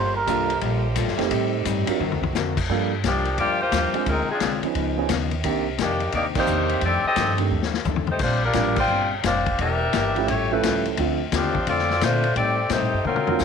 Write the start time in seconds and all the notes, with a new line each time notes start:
Already playing: G1 F3 G3 A#3 F4 G4 A4 C5
0.16 A#4
0.27 C2 G3 A#3 D4 F4 A4, kick, hi-hat pedal, ride
0.50 ride
0.61 A#1 G3 A#3, kick, ride
0.65 F4 A4
0.95 A1 G3 A#3 F4 A4, kick, hi-hat pedal, ride
1.07 G1, snare
1.17 F1 A3 C4 D#4 G4 C5, snare, ride
1.30 A2 D#3 G3 C4 G4, kick, ride
1.34 D#4
1.65 G2 A2 G3 C4 D#4, kick, hi-hat pedal, ride
1.86 F#3 C4 D4 F4 A#4, muted upright bass stroke, ride
1.99 F#2 D3 A#3 C4 F#4, floor tom
2.04 A#4
2.11 D2, floor tom
2.22 C2, floor tom
2.33 F2 D3 C4 F#4, snare, hi-hat pedal
2.37 A#4
2.57 kick, crash
2.69 G2 F3 G3 A#3 D4 F4 A4, kick
3.04 C2 G2 F3 A#3 D4 G4, kick, snare, hi-hat pedal, ride
3.25 ride
3.38 D2 G2 F3 A#3 D4 F4 G4 D5, kick, ride
3.61 A#3 F4 G4 C5
3.72 D#2 G2 F3 A#3 D4, kick, snare, hi-hat pedal, ride
3.93 G#3 C4 D4 F4 G#4, muted upright bass stroke, ride
4.06 D2 D3 G#3 C4 D#4 F4 A#4, kick, ride
4.32 F3 C4 D4 G#4
4.40 C2 D3 G#3 C4 F4, kick, snare, hi-hat pedal, ride
4.62 F3 B3 C#4 D#4 G#4, muted upright bass stroke, ride
4.75 C#2 C#3 F3 B3, kick, ride
4.80 D#4
4.97 F3 B3 C#4 D#4 G#4
5.09 D#2 C#3 F3 B3 D#4, kick, snare, hi-hat pedal, ride
5.31 ride
5.44 C2 C3 D#3 A#3 C4 D4 G4, kick, ride
5.78 F2 C3 D#3 A#3 D4 G4, kick, snare, hi-hat pedal, ride
5.82 D4
6.00 ride
6.12 D#2 C3 D#3 A#3 D#4 G4 D5, kick, ride
6.16 D4
6.35 D#3 A#3 C4 D#4 G4 C5 D5, kick, crash
6.46 E2 C3 D#3 A#3 D4, hi-hat pedal
6.69 ride
6.81 F2 D#3 A3, kick, ride
6.85 C4 D4 G4 A4 D5
7.04 A4 D#5, muted upright bass stroke
7.08 C4 G4
7.16 F2 G2 D#3 A3, kick, snare, hi-hat pedal, ride
7.20 D4
7.37 D#3 A3 C4 D4 G4, ride
7.51 D#2 F2 D#3 A3
7.55 D4
7.62 snare
7.74 snare
7.85 D2 F2 D#3 A3 D4, floor tom, hi-hat pedal
7.96 floor tom
8.07 G4 C5, floor tom
8.11 A3 D#4
8.19 A#1 A#2 G3 D4 F4 C5, kick, crash
8.23 C4 D4
8.45 G3 D4 F4 A#4
8.53 A1 A#2 F3 G3 A#3 C4 D4 G4, kick, snare, hi-hat pedal, ride
8.57 D4
8.76 F4 C5 D5 G5, kick, crash
8.88 G1 A#2 G3
8.92 C4 D4
9.23 F1 A#2 G3 C4 D4 G4 C5 F5, kick, snare, hi-hat pedal, ride
9.46 kick, ride
9.58 E1 E3 A#3 D4 G4 A#4 E5, kick, ride
9.92 G1 E3 A#3 D4 G4, kick, snare, hi-hat pedal, ride
10.16 F3 A3 C#4 E4 G4, ride
10.27 A1 A2 G3 A3 C#4 E4 F4 G4 C#5, kick, ride
10.51 F3 A3 C#4 E4 G4 A4 B4
10.63 C#2 A2 G3 C#4 F4, kick, snare, hi-hat pedal, ride
10.85 ride
10.97 D2 D3 F3 A3 C4 D4 F4, kick, ride
11.32 D#2 D3 F3 A3 C4 D4 F4 G4, kick, snare, hi-hat pedal, ride
11.55 kick
11.67 F2 D3 A3 C4 F4 A4 D5, kick, ride
11.79 snare
11.90 snare
12.01 A#2 D3 A3 C4 D4 F4 C5, kick, snare, hi-hat pedal, ride
12.24 ride
12.35 A2 G3 C4 D#4 G4 A4 D5, kick, ride
12.69 A2 C3 G3 A3 C4 D#4 G4 C5, kick, snare, hi-hat pedal, ride
12.74 D#4
12.81 A2
12.94 G2
13.04 D3 F#3 A#3 C4 F4 F#4 A#4, mid tom
13.16 mid tom
13.27 F#3 A#3 C4 D4 F4, floor tom
13.39 D2 D3 A#3 C4 F#4, snare, hi-hat pedal